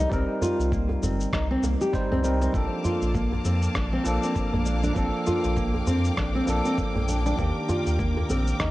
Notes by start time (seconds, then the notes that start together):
Already playing: G3 C4 D#4 A#4
0.00 D#4
0.09 C2 G3 C4 D#4, kick, cabasa
0.14 A#4
0.42 F4, djembe slap, djembe bass, cabasa
0.59 C2, djembe slap, cabasa
0.72 A#3, kick, cabasa
0.89 djembe tone
1.02 G1 C4, djembe tone, djembe bass, cabasa
1.21 cabasa
1.33 C2 D#4, kick, cross-stick, cabasa
1.51 C4
1.63 C2 A#3, djembe slap, cabasa
1.81 G4, cabasa
1.93 G3 C4 D#4 C5, kick, cabasa
2.10 C2 C4, djembe bass
2.23 G3 C4 D#4 A#4, djembe tone, cabasa
2.42 C4, djembe slap, cabasa
2.52 A#1 F3 A#3 C4 D4 F5 A5 D6, kick, cabasa
2.56 A4
2.85 F4, djembe slap, djembe bass, cabasa
3.02 A#1, djembe slap, cabasa
3.15 A#3, kick, cabasa
3.33 djembe tone
3.45 F2 C4, djembe tone, cabasa
3.62 cabasa
3.75 A#1 D4, kick, cross-stick, cabasa
3.93 C4
4.04 A#1 F3 A#3 D4 A4, cabasa
4.23 C4, cabasa
4.36 kick, cabasa
4.53 A#1 A#3, djembe bass
4.66 D4, cabasa
4.83 D4, djembe tone, cabasa
4.95 A#1 F3 A#3 C4 D4 G5, kick, cabasa
4.99 A4
5.26 F4, djembe slap, djembe bass, cabasa
5.44 A#1, djembe slap, cabasa
5.57 A#3, kick, cabasa
5.74 djembe tone
5.87 F2 C4, djembe tone, djembe bass, cabasa
6.05 cabasa
6.17 A#1 D4, kick, cross-stick, cabasa
6.35 C4
6.46 A#1 F3 A#3 D4 A4, djembe slap, cabasa
6.65 C4, cabasa
6.78 kick, cabasa
6.96 A#1 A#3, djembe bass
7.08 D4, djembe tone, cabasa
7.26 D4, djembe slap, cabasa
7.36 D#2 D#3 A#3 C4 D4 A#4, kick, cabasa
7.41 G4
7.69 F4, djembe slap, djembe bass, cabasa
7.87 D#2, djembe slap, cabasa
7.99 A#3, kick, cabasa
8.17 djembe tone
8.29 A#1 C4, djembe tone, cabasa
8.47 cabasa
8.60 D#2 D#4, kick, cross-stick, cabasa